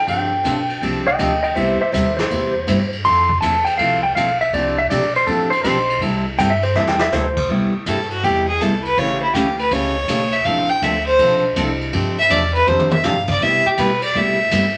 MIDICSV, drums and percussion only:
0, 0, Header, 1, 2, 480
1, 0, Start_track
1, 0, Key_signature, 0, "major"
1, 0, Tempo, 370142
1, 102, Time_signature, 4, 2, 24, 8
1, 19159, End_track
2, 0, Start_track
2, 0, Title_t, "Drums"
2, 99, Note_on_c, 9, 36, 24
2, 102, Note_on_c, 9, 51, 71
2, 228, Note_off_c, 9, 36, 0
2, 232, Note_off_c, 9, 51, 0
2, 579, Note_on_c, 9, 44, 60
2, 579, Note_on_c, 9, 51, 72
2, 580, Note_on_c, 9, 36, 28
2, 709, Note_off_c, 9, 36, 0
2, 709, Note_off_c, 9, 44, 0
2, 709, Note_off_c, 9, 51, 0
2, 899, Note_on_c, 9, 51, 49
2, 1029, Note_off_c, 9, 51, 0
2, 1064, Note_on_c, 9, 36, 23
2, 1070, Note_on_c, 9, 51, 66
2, 1193, Note_off_c, 9, 36, 0
2, 1200, Note_off_c, 9, 51, 0
2, 1542, Note_on_c, 9, 44, 56
2, 1542, Note_on_c, 9, 51, 75
2, 1544, Note_on_c, 9, 36, 23
2, 1671, Note_off_c, 9, 44, 0
2, 1671, Note_off_c, 9, 51, 0
2, 1674, Note_off_c, 9, 36, 0
2, 1866, Note_on_c, 9, 51, 49
2, 1995, Note_off_c, 9, 51, 0
2, 2026, Note_on_c, 9, 36, 21
2, 2028, Note_on_c, 9, 51, 72
2, 2156, Note_off_c, 9, 36, 0
2, 2157, Note_off_c, 9, 51, 0
2, 2509, Note_on_c, 9, 36, 22
2, 2512, Note_on_c, 9, 44, 72
2, 2512, Note_on_c, 9, 51, 75
2, 2639, Note_off_c, 9, 36, 0
2, 2641, Note_off_c, 9, 44, 0
2, 2641, Note_off_c, 9, 51, 0
2, 2834, Note_on_c, 9, 38, 63
2, 2834, Note_on_c, 9, 51, 51
2, 2964, Note_off_c, 9, 38, 0
2, 2964, Note_off_c, 9, 51, 0
2, 2990, Note_on_c, 9, 36, 26
2, 2993, Note_on_c, 9, 51, 73
2, 3120, Note_off_c, 9, 36, 0
2, 3122, Note_off_c, 9, 51, 0
2, 3469, Note_on_c, 9, 44, 56
2, 3469, Note_on_c, 9, 51, 76
2, 3472, Note_on_c, 9, 36, 19
2, 3599, Note_off_c, 9, 44, 0
2, 3599, Note_off_c, 9, 51, 0
2, 3602, Note_off_c, 9, 36, 0
2, 3795, Note_on_c, 9, 51, 51
2, 3925, Note_off_c, 9, 51, 0
2, 3950, Note_on_c, 9, 51, 74
2, 3954, Note_on_c, 9, 36, 23
2, 4079, Note_off_c, 9, 51, 0
2, 4084, Note_off_c, 9, 36, 0
2, 4272, Note_on_c, 9, 36, 67
2, 4402, Note_off_c, 9, 36, 0
2, 4434, Note_on_c, 9, 44, 65
2, 4434, Note_on_c, 9, 51, 77
2, 4435, Note_on_c, 9, 36, 20
2, 4564, Note_off_c, 9, 44, 0
2, 4564, Note_off_c, 9, 51, 0
2, 4565, Note_off_c, 9, 36, 0
2, 4747, Note_on_c, 9, 51, 54
2, 4876, Note_off_c, 9, 51, 0
2, 4913, Note_on_c, 9, 51, 76
2, 4917, Note_on_c, 9, 36, 20
2, 5042, Note_off_c, 9, 51, 0
2, 5047, Note_off_c, 9, 36, 0
2, 5399, Note_on_c, 9, 36, 27
2, 5400, Note_on_c, 9, 44, 63
2, 5400, Note_on_c, 9, 51, 73
2, 5529, Note_off_c, 9, 36, 0
2, 5530, Note_off_c, 9, 44, 0
2, 5530, Note_off_c, 9, 51, 0
2, 5718, Note_on_c, 9, 51, 49
2, 5848, Note_off_c, 9, 51, 0
2, 5880, Note_on_c, 9, 36, 19
2, 5880, Note_on_c, 9, 51, 75
2, 6009, Note_off_c, 9, 36, 0
2, 6010, Note_off_c, 9, 51, 0
2, 6360, Note_on_c, 9, 44, 66
2, 6360, Note_on_c, 9, 51, 81
2, 6361, Note_on_c, 9, 36, 29
2, 6489, Note_off_c, 9, 44, 0
2, 6489, Note_off_c, 9, 51, 0
2, 6491, Note_off_c, 9, 36, 0
2, 6679, Note_on_c, 9, 51, 54
2, 6809, Note_off_c, 9, 51, 0
2, 6836, Note_on_c, 9, 51, 67
2, 6839, Note_on_c, 9, 36, 21
2, 6966, Note_off_c, 9, 51, 0
2, 6969, Note_off_c, 9, 36, 0
2, 7162, Note_on_c, 9, 51, 56
2, 7292, Note_off_c, 9, 51, 0
2, 7315, Note_on_c, 9, 44, 57
2, 7315, Note_on_c, 9, 51, 83
2, 7320, Note_on_c, 9, 36, 19
2, 7445, Note_off_c, 9, 44, 0
2, 7445, Note_off_c, 9, 51, 0
2, 7450, Note_off_c, 9, 36, 0
2, 7644, Note_on_c, 9, 51, 52
2, 7774, Note_off_c, 9, 51, 0
2, 7801, Note_on_c, 9, 36, 29
2, 7802, Note_on_c, 9, 51, 71
2, 7930, Note_off_c, 9, 36, 0
2, 7931, Note_off_c, 9, 51, 0
2, 8280, Note_on_c, 9, 36, 25
2, 8283, Note_on_c, 9, 44, 66
2, 8283, Note_on_c, 9, 51, 87
2, 8409, Note_off_c, 9, 36, 0
2, 8413, Note_off_c, 9, 44, 0
2, 8413, Note_off_c, 9, 51, 0
2, 8592, Note_on_c, 9, 51, 53
2, 8722, Note_off_c, 9, 51, 0
2, 8753, Note_on_c, 9, 38, 59
2, 8882, Note_off_c, 9, 38, 0
2, 8912, Note_on_c, 9, 38, 71
2, 9041, Note_off_c, 9, 38, 0
2, 9065, Note_on_c, 9, 38, 97
2, 9194, Note_off_c, 9, 38, 0
2, 9235, Note_on_c, 9, 38, 58
2, 9235, Note_on_c, 9, 44, 62
2, 9364, Note_off_c, 9, 38, 0
2, 9364, Note_off_c, 9, 44, 0
2, 9555, Note_on_c, 9, 49, 83
2, 9557, Note_on_c, 9, 36, 79
2, 9684, Note_off_c, 9, 49, 0
2, 9686, Note_off_c, 9, 36, 0
2, 9717, Note_on_c, 9, 36, 25
2, 9846, Note_off_c, 9, 36, 0
2, 10192, Note_on_c, 9, 44, 55
2, 10192, Note_on_c, 9, 51, 82
2, 10197, Note_on_c, 9, 36, 21
2, 10322, Note_off_c, 9, 44, 0
2, 10322, Note_off_c, 9, 51, 0
2, 10327, Note_off_c, 9, 36, 0
2, 10512, Note_on_c, 9, 51, 50
2, 10641, Note_off_c, 9, 51, 0
2, 10680, Note_on_c, 9, 36, 28
2, 10682, Note_on_c, 9, 51, 65
2, 10810, Note_off_c, 9, 36, 0
2, 10812, Note_off_c, 9, 51, 0
2, 11160, Note_on_c, 9, 36, 21
2, 11162, Note_on_c, 9, 44, 54
2, 11162, Note_on_c, 9, 51, 71
2, 11290, Note_off_c, 9, 36, 0
2, 11292, Note_off_c, 9, 44, 0
2, 11292, Note_off_c, 9, 51, 0
2, 11477, Note_on_c, 9, 51, 47
2, 11607, Note_off_c, 9, 51, 0
2, 11636, Note_on_c, 9, 51, 67
2, 11638, Note_on_c, 9, 36, 29
2, 11765, Note_off_c, 9, 51, 0
2, 11768, Note_off_c, 9, 36, 0
2, 12117, Note_on_c, 9, 36, 23
2, 12118, Note_on_c, 9, 44, 67
2, 12118, Note_on_c, 9, 51, 78
2, 12246, Note_off_c, 9, 36, 0
2, 12247, Note_off_c, 9, 44, 0
2, 12247, Note_off_c, 9, 51, 0
2, 12440, Note_on_c, 9, 51, 53
2, 12569, Note_off_c, 9, 51, 0
2, 12594, Note_on_c, 9, 51, 71
2, 12595, Note_on_c, 9, 36, 25
2, 12723, Note_off_c, 9, 51, 0
2, 12725, Note_off_c, 9, 36, 0
2, 13071, Note_on_c, 9, 44, 61
2, 13071, Note_on_c, 9, 51, 75
2, 13073, Note_on_c, 9, 36, 25
2, 13200, Note_off_c, 9, 44, 0
2, 13200, Note_off_c, 9, 51, 0
2, 13203, Note_off_c, 9, 36, 0
2, 13389, Note_on_c, 9, 51, 49
2, 13518, Note_off_c, 9, 51, 0
2, 13552, Note_on_c, 9, 51, 67
2, 13553, Note_on_c, 9, 36, 29
2, 13681, Note_off_c, 9, 51, 0
2, 13683, Note_off_c, 9, 36, 0
2, 14033, Note_on_c, 9, 36, 23
2, 14033, Note_on_c, 9, 44, 68
2, 14033, Note_on_c, 9, 51, 71
2, 14162, Note_off_c, 9, 44, 0
2, 14162, Note_off_c, 9, 51, 0
2, 14163, Note_off_c, 9, 36, 0
2, 14350, Note_on_c, 9, 51, 52
2, 14480, Note_off_c, 9, 51, 0
2, 14510, Note_on_c, 9, 51, 76
2, 14513, Note_on_c, 9, 36, 25
2, 14640, Note_off_c, 9, 51, 0
2, 14642, Note_off_c, 9, 36, 0
2, 14989, Note_on_c, 9, 44, 69
2, 14989, Note_on_c, 9, 51, 74
2, 14992, Note_on_c, 9, 36, 26
2, 15119, Note_off_c, 9, 44, 0
2, 15119, Note_off_c, 9, 51, 0
2, 15122, Note_off_c, 9, 36, 0
2, 15316, Note_on_c, 9, 51, 49
2, 15446, Note_off_c, 9, 51, 0
2, 15467, Note_on_c, 9, 51, 68
2, 15472, Note_on_c, 9, 36, 28
2, 15597, Note_off_c, 9, 51, 0
2, 15602, Note_off_c, 9, 36, 0
2, 15949, Note_on_c, 9, 44, 55
2, 15949, Note_on_c, 9, 51, 76
2, 15952, Note_on_c, 9, 36, 29
2, 16078, Note_off_c, 9, 44, 0
2, 16078, Note_off_c, 9, 51, 0
2, 16082, Note_off_c, 9, 36, 0
2, 16270, Note_on_c, 9, 51, 51
2, 16400, Note_off_c, 9, 51, 0
2, 16433, Note_on_c, 9, 48, 57
2, 16562, Note_off_c, 9, 48, 0
2, 16591, Note_on_c, 9, 48, 71
2, 16720, Note_off_c, 9, 48, 0
2, 16744, Note_on_c, 9, 48, 97
2, 16874, Note_off_c, 9, 48, 0
2, 16903, Note_on_c, 9, 38, 59
2, 16903, Note_on_c, 9, 44, 69
2, 17032, Note_off_c, 9, 38, 0
2, 17032, Note_off_c, 9, 44, 0
2, 17215, Note_on_c, 9, 49, 81
2, 17225, Note_on_c, 9, 36, 75
2, 17344, Note_off_c, 9, 49, 0
2, 17355, Note_off_c, 9, 36, 0
2, 17387, Note_on_c, 9, 36, 27
2, 17516, Note_off_c, 9, 36, 0
2, 17860, Note_on_c, 9, 44, 57
2, 17860, Note_on_c, 9, 51, 80
2, 17865, Note_on_c, 9, 36, 30
2, 17990, Note_off_c, 9, 44, 0
2, 17990, Note_off_c, 9, 51, 0
2, 17995, Note_off_c, 9, 36, 0
2, 18179, Note_on_c, 9, 51, 76
2, 18308, Note_off_c, 9, 51, 0
2, 18343, Note_on_c, 9, 36, 23
2, 18472, Note_off_c, 9, 36, 0
2, 18819, Note_on_c, 9, 44, 56
2, 18819, Note_on_c, 9, 51, 80
2, 18823, Note_on_c, 9, 36, 24
2, 18948, Note_off_c, 9, 44, 0
2, 18948, Note_off_c, 9, 51, 0
2, 18952, Note_off_c, 9, 36, 0
2, 19159, End_track
0, 0, End_of_file